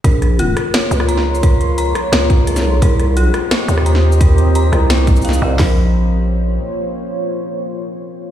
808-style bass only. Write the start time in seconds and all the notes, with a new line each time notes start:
0.04 A#1
0.91 C#2
2.12 C#2
2.60 C2
2.82 C2
3.68 D#2
4.72 C2
5.42 C2
5.59 A#1